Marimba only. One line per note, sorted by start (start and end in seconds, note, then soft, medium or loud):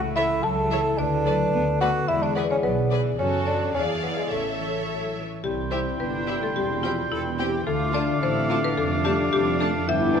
0.00 0.13 F#5 medium
0.16 0.41 E5 medium
0.43 0.94 A5 medium
0.99 1.77 D5 medium
1.81 2.07 F#5 medium
2.08 2.21 E5 medium
2.23 2.35 D5 medium
2.37 2.49 B4 medium
2.51 2.63 C#5 medium
2.63 3.15 B4 medium
3.19 3.45 C#5 medium
3.47 3.73 D5 medium
3.75 4.01 C#5 medium
4.03 4.16 B4 medium
4.17 4.30 G#4 soft
4.31 5.12 A4 soft
5.44 5.70 G4 medium
5.71 5.97 C5 medium
6.00 6.39 B4 medium
6.43 6.55 A4 medium
6.56 6.82 G4 medium
6.83 7.09 F4 medium
7.12 7.63 E4 medium
7.67 7.92 A4 medium
7.95 8.20 D5 medium
8.23 8.61 C5 medium
8.64 8.77 B4 medium
8.78 9.03 A4 medium
9.05 9.30 G4 medium
9.33 9.58 G4 loud
9.61 9.86 A4 medium
9.89 10.20 E5 loud